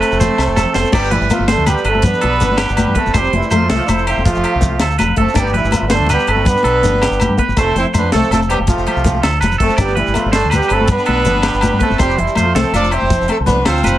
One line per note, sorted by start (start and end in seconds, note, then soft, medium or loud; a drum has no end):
0.00 0.77 A3 medium
0.00 0.77 C4 medium
0.00 0.77 A4 medium
0.00 0.19 B4 medium
0.00 closed hi-hat soft
0.00 low conga soft
0.00 low agogo medium
0.00 shekere soft
0.12 0.27 F1 medium
0.12 low conga soft
0.12 shekere soft
0.20 0.48 C4 medium
0.20 0.55 C5 medium
0.20 snare soft
0.20 closed hi-hat soft
0.20 muted conga medium
0.20 high conga medium
0.20 low conga medium
0.20 shekere medium
0.38 0.46 C2 medium
0.38 snare medium
0.38 low agogo medium
0.47 0.63 F1 medium
0.56 0.74 A4 medium
0.56 snare medium
0.56 high conga medium
0.56 low agogo medium
0.56 shekere medium
0.65 low conga medium
0.74 0.83 F1 medium
0.74 0.88 B3 medium
0.74 0.92 C5 medium
0.74 snare medium
0.74 low conga soft
0.74 shekere soft
0.79 0.94 A3 medium
0.79 0.94 C4 medium
0.79 0.94 A4 medium
0.84 high conga medium
0.84 low conga soft
0.84 shekere soft
0.92 1.18 G1 loud
0.92 1.13 G3 medium
0.92 1.13 B3 medium
0.92 1.20 D4 medium
0.92 3.13 G4 medium
0.92 1.13 G4 loud
0.92 3.12 B4 medium
0.92 1.11 D5 loud
0.92 3.13 D5 medium
0.92 kick medium
0.92 crash medium
0.92 muted conga medium
0.92 low agogo medium
0.92 shekere medium
1.04 shekere soft
1.11 1.31 E3 medium
1.11 1.31 G3 medium
1.11 1.31 E4 medium
1.11 1.47 B4 medium
1.11 closed hi-hat soft
1.11 high conga medium
1.11 low conga medium
1.21 1.29 G1 medium
1.21 low conga soft
1.21 shekere soft
1.30 1.48 F3 medium
1.30 1.49 A3 medium
1.30 1.44 B3 medium
1.30 1.48 F4 medium
1.30 closed hi-hat soft
1.30 muted conga medium
1.30 low agogo medium
1.30 shekere medium
1.39 1.56 G1 medium
1.39 high conga medium
1.48 1.68 A3 medium
1.48 1.76 B3 medium
1.48 1.68 D4 medium
1.48 1.68 A4 medium
1.48 1.66 C5 medium
1.48 snare medium
1.48 closed hi-hat medium
1.57 1.74 D2 medium
1.57 low conga medium
1.66 1.86 G3 medium
1.66 1.86 B3 medium
1.66 1.86 G4 medium
1.66 1.85 B4 medium
1.66 closed hi-hat medium
1.66 muted conga medium
1.66 high conga medium
1.66 low conga soft
1.66 low agogo medium
1.66 shekere medium
1.76 low conga soft
1.76 shekere soft
1.85 2.01 G1 medium
1.85 2.06 A3 medium
1.85 2.06 A4 medium
1.85 2.21 B4 medium
1.85 closed hi-hat soft
1.85 low agogo medium
1.90 2.06 C4 medium
1.95 high conga medium
2.02 2.12 G2 medium
2.02 2.93 B3 medium
2.02 2.93 B4 loud
2.02 kick medium
2.02 closed hi-hat medium
2.02 muted conga loud
2.02 low conga loud
2.02 shekere medium
2.07 2.94 D4 medium
2.14 shekere soft
2.21 2.39 B1 medium
2.21 2.57 A4 medium
2.21 closed hi-hat soft
2.21 high conga loud
2.21 low agogo medium
2.40 2.65 G1 medium
2.40 2.68 D4 medium
2.40 closed hi-hat soft
2.40 muted conga loud
2.40 low conga loud
2.40 shekere medium
2.51 high conga medium
2.57 2.76 G4 medium
2.57 snare medium
2.57 closed hi-hat medium
2.57 low agogo medium
2.69 2.85 G1 medium
2.69 shekere soft
2.77 2.95 G4 medium
2.77 closed hi-hat medium
2.77 muted conga loud
2.77 high conga loud
2.77 low agogo medium
2.77 shekere medium
2.88 2.96 G2 medium
2.88 low conga medium
2.95 3.14 A3 medium
2.95 3.10 B3 medium
2.95 3.14 C4 medium
2.95 3.14 A4 medium
2.95 3.13 B4 medium
2.95 kick medium
2.95 closed hi-hat soft
3.06 3.14 G1 medium
3.06 high conga medium
3.06 low conga soft
3.06 shekere soft
3.13 3.31 F1 loud
3.13 3.35 G3 medium
3.13 3.42 C4 medium
3.13 3.35 G4 loud
3.13 5.33 A4 medium
3.13 3.50 C5 medium
3.13 5.34 C5 medium
3.13 5.34 F5 medium
3.13 kick medium
3.13 closed hi-hat medium
3.13 muted conga loud
3.13 low agogo medium
3.13 shekere medium
3.17 3.35 C4 medium
3.24 shekere soft
3.33 3.41 F1 medium
3.33 3.51 E3 medium
3.33 3.51 G3 medium
3.33 3.51 E4 medium
3.33 closed hi-hat soft
3.33 high conga loud
3.33 low conga loud
3.43 low conga soft
3.43 shekere soft
3.51 3.67 F2 medium
3.51 3.66 A3 medium
3.51 3.69 C5 medium
3.51 closed hi-hat medium
3.51 muted conga medium
3.51 low agogo medium
3.51 shekere loud
3.55 3.72 F3 medium
3.55 3.72 A3 medium
3.55 3.72 F4 medium
3.62 high conga medium
3.70 3.78 C2 loud
3.70 3.97 A3 medium
3.70 4.05 A4 medium
3.70 snare medium
3.70 closed hi-hat medium
3.75 3.86 F3 medium
3.75 3.86 A3 medium
3.75 3.86 F4 medium
3.81 low conga medium
3.86 4.13 F1 medium
3.86 3.90 D4 medium
3.86 4.08 E4 medium
3.86 4.07 C5 loud
3.86 3.90 D5 medium
3.86 closed hi-hat soft
3.86 high conga medium
3.86 low conga soft
3.86 low agogo medium
3.86 shekere medium
3.98 low conga soft
3.98 shekere soft
4.07 4.25 C4 medium
4.07 4.26 E4 medium
4.07 4.42 G4 medium
4.07 4.25 C5 medium
4.07 closed hi-hat soft
4.07 low agogo medium
4.17 4.33 F1 medium
4.17 high conga medium
4.26 4.87 F3 medium
4.26 4.87 A3 medium
4.26 4.87 F4 loud
4.26 kick loud
4.26 closed hi-hat medium
4.26 muted conga loud
4.26 low conga loud
4.26 shekere medium
4.35 4.44 F1 medium
4.35 shekere soft
4.44 4.79 G4 medium
4.44 closed hi-hat soft
4.44 low agogo medium
4.55 4.78 C2 medium
4.61 4.89 C4 medium
4.61 kick medium
4.61 closed hi-hat soft
4.61 muted conga medium
4.61 low conga loud
4.61 shekere loud
4.71 high conga medium
4.80 4.97 D2 medium
4.80 4.98 A4 medium
4.80 snare medium
4.80 closed hi-hat medium
4.80 low agogo medium
4.91 shekere soft
4.99 5.16 F1 loud
4.99 5.17 B4 medium
4.99 closed hi-hat medium
4.99 muted conga medium
4.99 high conga medium
4.99 low agogo medium
4.99 shekere medium
5.08 low conga medium
5.16 5.26 F#1 medium
5.16 5.31 A3 medium
5.16 5.36 A3 medium
5.16 5.36 C4 medium
5.16 5.35 A4 medium
5.16 5.36 A4 medium
5.16 kick medium
5.16 closed hi-hat soft
5.27 high conga medium
5.27 shekere soft
5.34 5.60 G1 medium
5.34 5.62 D4 medium
5.34 7.55 B4 medium
5.34 7.55 D5 medium
5.34 5.53 D5 loud
5.34 7.55 G5 medium
5.34 kick medium
5.34 closed hi-hat medium
5.34 muted conga medium
5.34 low agogo medium
5.34 shekere medium
5.39 5.56 G3 medium
5.39 5.57 B3 medium
5.39 5.56 G4 loud
5.47 shekere soft
5.53 5.73 E3 medium
5.53 5.73 G3 medium
5.53 5.73 E4 medium
5.53 5.89 B4 medium
5.53 closed hi-hat soft
5.53 high conga medium
5.53 low conga medium
5.62 5.72 G1 medium
5.62 low conga soft
5.62 shekere soft
5.71 5.86 B3 medium
5.71 closed hi-hat medium
5.71 muted conga medium
5.71 low agogo medium
5.71 shekere loud
5.75 5.88 F3 medium
5.75 5.88 A3 medium
5.75 5.88 F4 medium
5.75 high conga medium
5.82 5.98 G1 medium
5.88 5.92 B3 medium
5.88 6.18 B3 medium
5.88 5.92 B4 medium
5.88 6.09 C5 medium
5.88 snare medium
5.88 closed hi-hat medium
5.93 6.11 A3 medium
5.93 6.11 D4 medium
5.93 6.11 A4 medium
5.98 6.16 D2 medium
5.98 low conga medium
6.06 6.27 B4 medium
6.06 closed hi-hat medium
6.06 muted conga medium
6.06 low conga soft
6.06 low agogo medium
6.06 shekere medium
6.13 6.29 G3 medium
6.13 6.29 B3 medium
6.13 6.29 G4 loud
6.17 low conga soft
6.17 shekere soft
6.27 6.44 G1 medium
6.27 6.48 A3 medium
6.27 6.48 C4 medium
6.27 6.48 A4 medium
6.27 6.64 B4 medium
6.27 closed hi-hat soft
6.27 low agogo medium
6.37 high conga medium
6.45 6.55 G2 loud
6.45 7.35 B3 medium
6.45 7.36 D4 medium
6.45 7.35 B4 loud
6.45 kick loud
6.45 closed hi-hat medium
6.45 muted conga medium
6.45 low conga medium
6.45 shekere medium
6.57 shekere soft
6.63 6.81 B1 loud
6.63 7.00 A4 medium
6.63 closed hi-hat soft
6.63 high conga medium
6.63 low agogo medium
6.83 7.07 G1 medium
6.83 7.11 D4 medium
6.83 closed hi-hat soft
6.83 muted conga medium
6.83 low conga medium
6.83 shekere loud
6.94 high conga medium
7.02 7.20 G4 medium
7.02 snare medium
7.02 closed hi-hat medium
7.02 low agogo medium
7.11 7.27 G1 medium
7.11 shekere soft
7.20 7.39 G4 medium
7.20 closed hi-hat soft
7.20 muted conga medium
7.20 high conga medium
7.20 low agogo medium
7.20 shekere loud
7.29 7.37 G2 medium
7.29 low conga medium
7.38 7.52 B3 medium
7.38 7.57 B4 medium
7.38 kick medium
7.38 closed hi-hat soft
7.48 7.56 G1 medium
7.48 high conga medium
7.48 low conga soft
7.48 shekere soft
7.56 7.73 F1 loud
7.56 7.75 A3 medium
7.56 7.84 C4 medium
7.56 7.75 C4 medium
7.56 7.75 A4 loud
7.56 9.56 C5 medium
7.56 7.93 C5 loud
7.56 9.54 F5 medium
7.56 9.49 A5 medium
7.56 kick medium
7.56 closed hi-hat medium
7.56 muted conga medium
7.56 low conga soft
7.56 low agogo medium
7.56 shekere loud
7.75 7.83 F1 medium
7.75 7.86 C4 medium
7.75 7.86 E4 medium
7.75 7.86 C5 medium
7.75 closed hi-hat soft
7.75 high conga medium
7.75 low conga medium
7.75 shekere soft
7.94 8.10 F2 medium
7.94 8.08 A3 medium
7.94 8.13 D4 medium
7.94 8.12 C5 medium
7.94 closed hi-hat soft
7.94 muted conga medium
7.94 low agogo medium
7.94 shekere loud
7.98 8.14 B3 medium
7.98 8.14 B4 medium
8.04 high conga medium
8.12 8.22 C2 loud
8.12 8.30 A3 medium
8.12 8.41 A3 medium
8.12 8.30 C4 medium
8.12 8.48 A4 medium
8.12 8.30 A4 loud
8.12 snare medium
8.12 closed hi-hat medium
8.12 shekere soft
8.23 low conga medium
8.23 shekere soft
8.30 8.55 F1 medium
8.30 8.40 A3 medium
8.30 8.40 C4 medium
8.30 8.40 A4 medium
8.30 closed hi-hat medium
8.30 muted conga medium
8.30 high conga medium
8.30 low agogo medium
8.30 shekere medium
8.42 shekere soft
8.49 8.58 G3 medium
8.49 8.58 B3 medium
8.49 8.85 G4 medium
8.49 8.58 G4 medium
8.49 closed hi-hat medium
8.49 low conga soft
8.49 low agogo medium
8.49 shekere soft
8.59 8.75 F1 medium
8.59 high conga medium
8.59 low conga soft
8.67 9.29 F3 medium
8.67 9.29 A3 medium
8.67 9.29 F4 medium
8.67 kick medium
8.67 closed hi-hat medium
8.67 muted conga medium
8.67 low conga medium
8.67 shekere medium
8.78 8.86 F1 medium
8.78 low conga soft
8.78 shekere soft
8.87 9.22 G4 medium
8.87 closed hi-hat medium
8.87 high conga medium
8.87 low agogo medium
8.96 9.20 C2 medium
8.96 shekere soft
9.04 9.33 C4 medium
9.04 kick medium
9.04 closed hi-hat medium
9.04 muted conga medium
9.04 low conga loud
9.04 shekere medium
9.15 high conga medium
9.23 9.39 D2 medium
9.23 9.40 A4 medium
9.23 snare medium
9.23 closed hi-hat medium
9.23 low agogo medium
9.35 low conga soft
9.41 9.58 F1 medium
9.41 9.58 B4 medium
9.41 closed hi-hat medium
9.41 muted conga medium
9.41 high conga medium
9.41 low agogo medium
9.41 shekere medium
9.52 low conga medium
9.52 shekere soft
9.58 9.68 F1 medium
9.58 9.74 A3 medium
9.58 9.78 C4 medium
9.58 9.76 A4 medium
9.58 kick medium
9.58 closed hi-hat medium
9.58 low conga soft
9.62 9.79 A3 medium
9.62 9.79 A4 medium
9.70 high conga medium
9.70 low conga soft
9.70 shekere soft
9.77 10.02 G1 loud
9.77 9.98 G3 medium
9.77 10.06 D4 medium
9.77 9.98 G4 medium
9.77 9.95 D5 loud
9.77 11.97 D5 medium
9.77 11.97 G5 medium
9.77 11.97 B5 medium
9.77 kick medium
9.77 closed hi-hat medium
9.77 muted conga medium
9.77 low agogo medium
9.77 shekere medium
9.81 9.98 B3 medium
9.88 shekere soft
9.95 10.16 E3 medium
9.95 10.16 G3 medium
9.95 10.16 E4 medium
9.95 10.31 B4 medium
9.95 closed hi-hat soft
9.95 high conga medium
9.95 low conga medium
10.07 10.15 G1 medium
10.07 low conga soft
10.07 shekere soft
10.14 10.34 F3 medium
10.14 10.34 A3 medium
10.14 10.28 B3 medium
10.14 10.34 F4 medium
10.14 closed hi-hat medium
10.14 muted conga medium
10.14 low agogo medium
10.14 shekere medium
10.26 10.41 G1 loud
10.26 high conga medium
10.32 10.51 A3 medium
10.32 10.51 D4 medium
10.32 10.51 A4 loud
10.32 10.50 C5 medium
10.32 snare medium
10.32 closed hi-hat medium
10.44 10.60 D2 medium
10.44 low conga medium
10.50 10.67 B4 medium
10.50 closed hi-hat soft
10.50 muted conga medium
10.50 high conga medium
10.50 low conga soft
10.50 low agogo medium
10.50 shekere medium
10.55 10.72 G3 medium
10.55 10.72 B3 medium
10.55 10.72 G4 medium
10.62 shekere soft
10.68 10.87 G1 medium
10.68 10.90 C4 medium
10.68 11.04 B4 medium
10.68 closed hi-hat soft
10.68 low agogo medium
10.73 10.90 A3 medium
10.73 10.90 A4 loud
10.81 high conga medium
10.88 10.97 G2 medium
10.88 11.78 B3 loud
10.88 11.78 D4 medium
10.88 11.78 B4 loud
10.88 kick loud
10.88 closed hi-hat medium
10.88 muted conga loud
10.88 low conga loud
10.88 shekere medium
10.99 shekere soft
11.06 11.24 B1 loud
11.06 11.42 A4 medium
11.06 closed hi-hat soft
11.06 high conga loud
11.06 low agogo medium
11.25 11.50 G1 medium
11.25 11.53 D4 medium
11.25 closed hi-hat medium
11.25 muted conga medium
11.25 low conga medium
11.25 shekere medium
11.36 high conga medium
11.42 11.61 G4 medium
11.42 snare medium
11.42 closed hi-hat medium
11.42 low agogo medium
11.54 11.70 G1 medium
11.54 shekere soft
11.61 11.80 G4 medium
11.61 closed hi-hat medium
11.61 muted conga medium
11.61 high conga loud
11.61 low agogo medium
11.61 shekere medium
11.73 11.81 G2 medium
11.79 12.00 A3 medium
11.79 11.94 B3 medium
11.79 11.99 C4 medium
11.79 12.00 A4 medium
11.79 11.98 B4 medium
11.79 kick medium
11.79 closed hi-hat soft
11.90 11.99 G1 medium
11.90 high conga medium
11.90 low conga soft
11.90 shekere soft
11.98 12.16 F1 loud
11.98 12.18 G3 loud
11.98 12.27 C4 medium
11.98 12.17 C4 medium
11.98 12.18 G4 loud
11.98 13.98 C5 medium
11.98 12.35 C5 loud
11.98 13.98 A5 medium
11.98 13.98 C6 medium
11.98 kick medium
11.98 closed hi-hat medium
11.98 muted conga medium
11.98 low agogo medium
11.98 shekere medium
12.10 shekere soft
12.18 12.27 F1 medium
12.18 12.37 E3 medium
12.18 12.36 G3 medium
12.18 12.37 E4 medium
12.18 closed hi-hat soft
12.18 low conga medium
12.28 low conga soft
12.28 shekere soft
12.35 12.52 F2 medium
12.35 12.54 F3 medium
12.35 12.54 A3 medium
12.35 12.50 A3 medium
12.35 12.54 F4 medium
12.35 12.54 C5 medium
12.35 closed hi-hat soft
12.35 muted conga medium
12.35 low agogo medium
12.35 shekere medium
12.46 high conga medium
12.55 12.63 C2 loud
12.55 12.82 A3 medium
12.55 12.74 A3 medium
12.55 12.74 C4 medium
12.55 12.90 A4 medium
12.55 12.74 A4 medium
12.55 snare medium
12.55 closed hi-hat medium
12.64 low conga medium
12.73 12.97 F1 loud
12.73 12.92 D4 loud
12.73 12.91 F4 medium
12.73 12.92 D5 loud
12.73 closed hi-hat medium
12.73 high conga medium
12.73 low conga soft
12.73 low agogo medium
12.73 shekere medium
12.83 low conga soft
12.83 shekere soft
12.91 13.28 C4 medium
12.91 13.29 E4 medium
12.91 13.27 G4 medium
12.91 13.30 C5 loud
12.91 closed hi-hat soft
12.91 low agogo medium
13.01 13.18 F1 medium
13.01 high conga medium
13.10 kick loud
13.10 closed hi-hat medium
13.10 muted conga loud
13.10 low conga medium
13.10 shekere medium
13.21 13.28 F1 medium
13.21 shekere soft
13.28 13.38 A3 medium
13.28 13.37 C4 medium
13.28 13.38 A4 medium
13.28 muted clean electric guitar stroke medium
13.28 closed hi-hat soft
13.28 high conga medium
13.28 low agogo medium
13.40 13.63 C2 medium
13.46 13.64 B3 loud
13.46 13.75 C4 medium
13.46 13.63 D4 medium
13.46 13.64 B4 loud
13.46 kick medium
13.46 closed hi-hat soft
13.46 muted conga loud
13.46 low conga loud
13.46 shekere medium
13.56 high conga medium
13.65 13.82 D2 medium
13.65 13.98 C4 loud
13.65 13.98 F4 medium
13.65 13.83 A4 medium
13.65 13.98 C5 loud
13.65 snare loud
13.65 closed hi-hat medium
13.65 low agogo medium
13.77 shekere soft
13.83 13.98 F1 loud
13.83 13.98 B4 medium
13.83 closed hi-hat medium
13.83 muted conga medium
13.83 high conga medium
13.83 low agogo medium
13.83 shekere medium
13.91 low conga medium